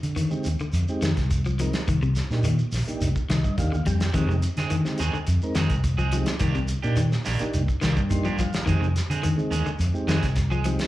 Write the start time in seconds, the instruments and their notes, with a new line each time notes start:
0.03 fingered electric bass D3, closed hi-hat, shekere
0.16 clean electric guitar D#3, closed hi-hat, shekere
0.30 tonewheel organ G#3 C4 D#4 G4, shekere
0.44 fingered electric bass D#2, closed hi-hat, shekere
0.59 clean electric guitar D3, shekere
0.73 fingered electric bass F2, closed hi-hat, shekere
0.88 tonewheel organ G#3 C4 D#4 G4, shekere
1.02 fingered electric bass F2, clean electric guitar D#3, snare, closed hi-hat, shekere
1.17 fingered electric bass C2, kick, snare, closed hi-hat, shekere
1.31 kick, closed hi-hat, shekere
1.45 clean electric guitar F3, shekere
1.59 clean electric guitar F3, tonewheel organ G#3 C4 D#4 A#4, closed hi-hat, shekere
1.73 snare, closed hi-hat, shekere
1.88 fingered electric bass C2, clean electric guitar D#3, kick, closed hi-hat, shekere
2.02 clean electric guitar C3, shekere
2.15 snare, closed hi-hat, shekere
2.31 fingered electric bass A#2, tonewheel organ A#3 D4 D#4 G4, snare, shekere
2.43 clean electric guitar D#3, closed hi-hat, shekere
2.59 shekere
2.72 fingered electric bass A#1, snare, open hi-hat, shekere
2.86 tonewheel organ A#3 D4 D#4 G4, muted fingered electric bass stroke, closed hi-hat, shekere
3.01 fingered electric bass C2, closed hi-hat, shekere
3.16 kick, shekere
3.29 fingered electric bass C2, clean electric guitar D#3, tonewheel organ D#5, snare, closed hi-hat, shekere
3.44 fingered electric bass G2, kick, shekere
3.58 fingered electric bass D#2, tonewheel organ A#3 D4 D#4 G4 F5, kick, closed hi-hat, shekere
3.72 clean electric guitar D3, shekere
3.86 fingered electric bass F2, clean electric guitar G3, tonewheel organ G5, kick, closed hi-hat, shekere
4.00 snare, closed hi-hat, shekere
4.13 fingered electric bass F2, clean electric guitar D#3 G#3, tonewheel organ G#3 C4 D#4 G4, muted clean electric guitar stroke, kick, closed hi-hat, shekere
4.29 clean electric guitar C3, shekere
4.42 closed hi-hat, shekere
4.57 fingered electric bass D3, clean electric guitar G#3 C4 G#4, snare, closed hi-hat, shekere
4.70 clean electric guitar D#3, closed hi-hat, shekere
4.85 tonewheel organ G#3 C4 D#4 G4, snare, shekere
4.98 fingered electric bass D#2, clean electric guitar D#3 G#3 C4 G#4, closed hi-hat, shekere
5.14 clean electric guitar D3, muted fingered electric bass stroke, shekere
5.27 fingered electric bass F2, closed hi-hat, shekere
5.42 tonewheel organ G#3 C4 D#4 A#4, shekere
5.55 fingered electric bass F2, clean electric guitar D#3 G#3 C4 G#4, snare, closed hi-hat, shekere
5.70 fingered electric bass C2, kick, closed hi-hat, shekere
5.84 kick, closed hi-hat, shekere
5.97 clean electric guitar F3 G#3 C4 G#4, shekere
6.12 clean electric guitar F3, tonewheel organ G#3 C4 D#4 G4, closed hi-hat, shekere
6.26 snare, closed hi-hat, shekere
6.39 fingered electric bass C2, clean electric guitar D#3 A#3 D4 G4, kick, closed hi-hat, shekere
6.55 clean electric guitar C3, shekere
6.68 closed hi-hat, shekere
6.83 fingered electric bass A#2, clean electric guitar A#3 D4 G4, tonewheel organ A#3 D4 D#4 G4, shekere
6.96 clean electric guitar D#3, closed hi-hat, shekere
7.12 snare, shekere
7.25 fingered electric bass A#1, clean electric guitar D#3 A#3 D4 G4, snare, open hi-hat, shekere
7.39 tonewheel organ A#3 D4 D#4 G4, muted fingered electric bass stroke, closed hi-hat, shekere
7.54 fingered electric bass C2, closed hi-hat, shekere
7.68 kick, shekere
7.81 fingered electric bass C2, clean electric guitar D#3 A#3 D4 G4, snare, closed hi-hat, shekere
7.97 fingered electric bass G2, kick, shekere
8.10 tonewheel organ A#3 D4 D#4 G4 C6, kick, closed hi-hat, shekere
8.25 clean electric guitar F3 A#3 D4 G4, shekere
8.39 clean electric guitar F3, tonewheel organ F5, kick, closed hi-hat, shekere
8.53 snare, closed hi-hat, shekere
8.65 fingered electric bass F2, clean electric guitar D#3 G#3 C4 G#4, tonewheel organ G#3 C4 D#4 G4, kick, closed hi-hat, shekere
8.81 clean electric guitar C3, shekere
8.96 snare, closed hi-hat, shekere
9.10 fingered electric bass D3, clean electric guitar G#3 C4 G#4, closed hi-hat, shekere
9.23 clean electric guitar D#3, closed hi-hat, shekere
9.37 tonewheel organ G#3 C4 D#4 G#4, shekere
9.51 fingered electric bass D#2, clean electric guitar D#3 G#3 G#4, muted clean electric guitar stroke, closed hi-hat, shekere
9.66 clean electric guitar D3, muted fingered electric bass stroke, shekere
9.79 fingered electric bass F2, closed hi-hat, shekere
9.93 tonewheel organ G#3 C4 D#4 G4, shekere
10.07 fingered electric bass F2, clean electric guitar D#3 G#3 C4 G#4, snare, closed hi-hat, shekere
10.23 fingered electric bass C2, kick, snare, closed hi-hat, shekere
10.36 kick, snare, closed hi-hat, shekere
10.50 clean electric guitar F3 G#3 G#4, shekere
10.64 clean electric guitar F3, tonewheel organ G#3 C4 D#4 G4, closed hi-hat, shekere
10.79 snare, closed hi-hat, shekere